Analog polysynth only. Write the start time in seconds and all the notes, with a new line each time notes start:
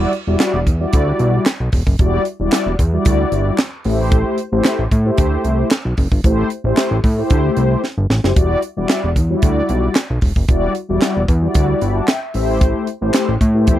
Already playing: G3 E4 F#4 D5
0.27 G3 E4 F#4 D5
0.80 G3 E4 F#4 D5
1.99 G3 E4 F#4 D5
2.40 G3 E4 F#4 D5
2.93 G3 E4 F#4 D5
3.85 A3 E4 G4 B4
3.92 C5
4.52 A3 E4 G4 C5
5.05 A3 E4 G4 C5
6.24 A3 E4 G4 C5
6.65 A3 E4 G4 C5
7.17 A3 E4 G4 C5
8.23 A3 E4 G4 C5
8.36 G3 E4 F#4 D5
8.77 G3 E4 F#4 D5
9.30 G3 E4 F#4 C#5
9.37 D5
10.48 G3 E4 F#4 D5
10.89 G3 E4 F#4 D5
11.42 G3 E4 F#4 D5
11.82 G5 B5
11.95 F#5 A5
12.08 E5 G5
12.22 E5
12.34 A3 E4 G4 C5
13.01 A3 E4 G4 C5
13.54 A3 E4 G4 B4
13.61 C5